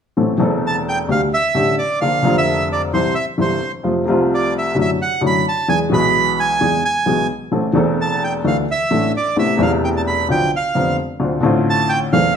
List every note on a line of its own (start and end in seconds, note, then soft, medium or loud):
0.17 0.36 A1 soft
0.17 0.37 A2 soft
0.17 0.36 E3 soft
0.17 0.36 A3 soft
0.17 0.37 C4 soft
0.17 0.37 A4 soft
0.38 1.05 E1 medium
0.38 1.05 E2 medium
0.38 1.04 E3 soft
0.38 1.05 A3 soft
0.38 1.06 C4 soft
0.42 1.07 A4 medium
0.67 0.76 A5 medium
0.89 0.99 G5 medium
1.08 1.28 D2 soft
1.08 1.28 D3 soft
1.08 1.28 G3 soft
1.08 1.28 A3 soft
1.08 1.28 G4 soft
1.08 1.21 F5 medium
1.34 1.75 E5 medium
1.54 1.74 A1 soft
1.54 1.74 A2 soft
1.54 1.74 D3 soft
1.54 1.74 G3 soft
1.54 1.74 A3 soft
1.54 1.74 G4 soft
1.78 1.99 D5 medium
2.01 2.21 A#1 soft
2.01 2.21 A#2 soft
2.01 2.20 D3 soft
2.01 2.20 F3 soft
2.01 2.20 A#3 soft
2.01 2.21 F4 soft
2.01 2.36 F5 medium
2.23 2.90 F1 medium
2.23 2.90 F2 medium
2.23 2.88 D3 soft
2.23 2.89 F3 soft
2.23 2.90 A#3 soft
2.23 2.90 F4 medium
2.38 2.68 E5 medium
2.72 2.82 D5 medium
2.94 3.12 C2 soft
2.94 3.12 C3 soft
2.94 3.12 E3 soft
2.94 3.12 G3 soft
2.94 3.13 E4 soft
2.94 3.14 C5 medium
3.15 3.25 E5 medium
3.38 3.57 G1 soft
3.38 3.57 G2 soft
3.38 3.57 C3 soft
3.38 3.57 E3 soft
3.38 3.57 G3 soft
3.38 3.58 E4 soft
3.38 3.72 C5 medium
3.83 4.03 F2 soft
3.83 4.03 C3 soft
3.83 4.03 F3 soft
3.83 4.03 A3 soft
3.83 4.03 F4 soft
4.07 4.73 C2 medium
4.07 4.73 C3 medium
4.07 4.73 F3 soft
4.07 4.74 A3 soft
4.07 4.74 F4 medium
4.35 4.54 D5 medium
4.58 4.77 E5 medium
4.75 4.95 F#2 soft
4.75 4.95 D3 soft
4.75 4.95 F#3 soft
4.75 4.95 A3 soft
4.75 4.95 E4 soft
4.81 4.90 E5 medium
5.02 5.22 F#5 medium
5.21 5.41 F#2 soft
5.21 5.41 D3 soft
5.21 5.41 F#3 soft
5.21 5.41 A3 soft
5.21 5.41 E4 soft
5.26 5.46 B5 medium
5.49 5.68 A5 medium
5.68 5.88 E2 soft
5.68 5.88 E3 soft
5.68 5.88 G#3 soft
5.68 5.88 B3 soft
5.68 5.88 G#4 soft
5.68 5.79 G#5 medium
5.90 6.57 B1 medium
5.90 6.57 B2 medium
5.90 6.56 E3 soft
5.90 6.57 G#3 soft
5.90 6.57 B3 soft
5.94 6.58 G#4 medium
5.94 6.40 B5 medium
6.40 6.84 G#5 medium
6.61 6.80 E2 soft
6.61 6.80 E3 soft
6.61 6.80 G#3 soft
6.61 6.80 B3 soft
6.61 6.80 G#4 soft
6.85 7.27 G#5 medium
7.06 7.26 B1 soft
7.06 7.26 B2 soft
7.06 7.25 E3 soft
7.06 7.26 G#3 soft
7.06 7.25 B3 soft
7.06 7.26 G#4 soft
7.52 7.71 A1 soft
7.52 7.71 A2 soft
7.52 7.71 E3 soft
7.52 7.71 A3 soft
7.52 7.71 C4 soft
7.52 7.72 A4 soft
7.73 8.41 E1 medium
7.73 8.41 E2 medium
7.73 8.40 E3 soft
7.73 8.40 A3 soft
7.73 8.41 C4 soft
7.73 8.42 A4 medium
8.01 8.23 A5 medium
8.24 8.34 G5 medium
8.44 8.64 D2 soft
8.44 8.64 D3 soft
8.44 8.64 E3 soft
8.44 8.64 A3 soft
8.44 8.64 D4 soft
8.44 8.64 A4 soft
8.44 8.57 F5 medium
8.71 9.12 E5 medium
8.91 9.10 A1 soft
8.91 9.10 A2 soft
8.91 9.10 E3 soft
8.91 9.10 A3 soft
8.91 9.10 D4 soft
8.91 9.10 A4 soft
9.17 9.37 D5 medium
9.37 9.56 A1 soft
9.37 9.56 A2 soft
9.37 9.55 C3 soft
9.37 9.56 A3 soft
9.37 9.56 B3 soft
9.37 9.56 E4 soft
9.37 9.61 E5 medium
9.57 10.25 E1 medium
9.57 10.24 E2 medium
9.57 10.24 C3 medium
9.57 10.24 A3 soft
9.57 10.25 B3 soft
9.61 10.26 E4 medium
9.61 9.72 F5 medium
9.84 9.89 G5 medium
9.97 10.02 A5 medium
10.07 10.28 B5 medium
10.29 10.48 B1 soft
10.29 10.48 B2 soft
10.29 10.48 D3 soft
10.29 10.48 F3 soft
10.29 10.48 B3 soft
10.29 10.48 F4 soft
10.29 10.51 G5 medium
10.56 10.97 F5 medium
10.75 10.94 F1 soft
10.75 10.94 F2 soft
10.75 10.94 D3 soft
10.75 10.94 F3 soft
10.75 10.94 B3 soft
10.75 10.94 F4 soft
11.20 11.39 D2 soft
11.20 11.39 D3 soft
11.20 11.40 A3 soft
11.20 11.40 C4 soft
11.20 11.40 F4 soft
11.41 12.09 A1 medium
11.41 12.08 A2 medium
11.41 12.07 D3 medium
11.41 12.08 A3 medium
11.41 12.09 C4 soft
11.45 12.10 F4 medium
11.70 11.92 A5 medium
11.89 11.99 G5 medium
12.13 12.32 E2 soft
12.13 12.32 E3 soft
12.13 12.32 A3 soft
12.13 12.32 C4 soft
12.13 12.32 A4 soft
12.13 12.34 F5 medium